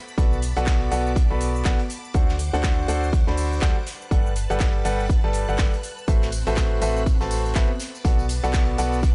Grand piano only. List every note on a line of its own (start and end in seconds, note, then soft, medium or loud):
0.18 0.37 B3 medium
0.18 0.37 F#4 medium
0.18 0.37 A4 medium
0.18 0.37 B4 medium
0.18 0.37 D5 medium
0.18 0.37 F#5 medium
0.57 0.89 B3 loud
0.57 0.89 F#4 medium
0.57 0.89 A4 medium
0.57 0.89 B4 medium
0.57 0.89 D5 medium
0.57 0.89 F#5 loud
0.92 1.11 B3 loud
0.92 1.11 F#4 medium
0.92 1.11 A4 loud
0.92 1.11 B4 medium
0.92 1.11 D5 loud
0.92 1.11 F#5 loud
1.30 1.63 B3 medium
1.30 1.63 F#4 medium
1.30 1.63 A4 medium
1.30 1.63 B4 medium
1.30 1.63 D5 medium
1.30 1.63 B5 medium
1.65 1.79 B3 medium
1.65 1.79 F#4 medium
1.65 1.79 A4 medium
1.65 1.79 B4 medium
1.65 1.79 D5 medium
1.65 1.79 F#5 loud
2.14 2.34 D3 medium
2.14 2.34 F#4 medium
2.14 2.34 A4 medium
2.14 2.34 C5 medium
2.14 2.34 D5 medium
2.14 2.34 F#5 medium
2.53 2.86 D3 loud
2.53 2.86 F#4 medium
2.53 2.86 A4 medium
2.53 2.86 C5 medium
2.53 2.86 D5 medium
2.53 2.86 F#5 loud
2.88 3.08 D3 loud
2.88 3.08 F#4 medium
2.88 3.08 A4 loud
2.88 3.08 C5 loud
2.88 3.08 D5 medium
2.88 3.08 F#5 loud
3.27 3.60 D3 medium
3.27 3.60 F#4 medium
3.27 3.60 A4 medium
3.27 3.60 C5 medium
3.27 3.60 D5 medium
3.27 3.60 B5 medium
3.62 3.75 G3 medium
3.62 3.75 F#4 medium
3.62 3.75 A4 medium
3.62 3.75 C5 medium
3.62 3.75 D5 medium
3.62 3.75 F#5 loud
4.11 4.31 G3 medium
4.11 4.31 G4 medium
4.11 4.31 A4 medium
4.11 4.31 B4 medium
4.11 4.31 D5 medium
4.11 4.31 F#5 medium
4.50 4.83 G3 loud
4.50 4.83 G4 medium
4.50 4.83 A4 medium
4.50 4.83 B4 medium
4.50 4.83 D5 medium
4.50 4.83 F#5 loud
4.85 5.04 G3 loud
4.85 5.04 G4 loud
4.85 5.04 A4 medium
4.85 5.04 B4 medium
4.85 5.04 D5 loud
4.85 5.04 F#5 loud
5.24 5.46 G3 medium
5.24 5.46 G4 medium
5.24 5.46 A4 medium
5.24 5.46 B4 medium
5.24 5.46 D5 medium
5.24 5.46 A5 medium
5.48 5.57 G3 medium
5.48 5.57 G4 medium
5.48 5.57 A4 medium
5.48 5.57 B4 medium
5.48 5.57 D5 medium
5.48 5.57 F#5 medium
5.59 5.72 A4 medium
5.59 5.72 F#5 medium
6.08 6.27 A3 medium
6.08 6.27 F#4 medium
6.08 6.27 A4 medium
6.08 6.27 B4 medium
6.08 6.27 C5 medium
6.08 6.27 E5 medium
6.47 6.79 A3 loud
6.47 6.79 F#4 medium
6.47 6.79 A4 medium
6.47 6.79 B4 medium
6.47 6.79 C5 medium
6.47 6.79 E5 loud
6.82 7.01 A3 loud
6.82 7.01 F#4 medium
6.82 7.01 A4 medium
6.82 7.01 B4 loud
6.82 7.01 C5 medium
6.82 7.01 E5 loud
7.21 7.53 A3 medium
7.21 7.53 F#4 medium
7.21 7.53 A4 medium
7.21 7.53 B4 medium
7.21 7.53 C5 medium
7.21 7.53 A5 medium
7.55 7.69 B3 medium
7.55 7.69 F#4 medium
7.55 7.69 A4 medium
7.55 7.69 B4 medium
7.55 7.69 C5 medium
7.55 7.69 E5 loud
8.05 8.24 B3 medium
8.05 8.24 F#4 medium
8.05 8.24 A4 medium
8.05 8.24 B4 medium
8.05 8.24 D5 medium
8.05 8.24 F#5 medium
8.44 8.76 B3 loud
8.44 8.76 F#4 medium
8.44 8.76 A4 medium
8.44 8.76 B4 medium
8.44 8.76 D5 medium
8.44 8.76 F#5 loud
8.78 8.98 B3 loud
8.78 8.98 F#4 medium
8.78 8.98 A4 medium
8.78 8.98 B4 medium
8.78 8.98 D5 loud
8.78 8.98 F#5 loud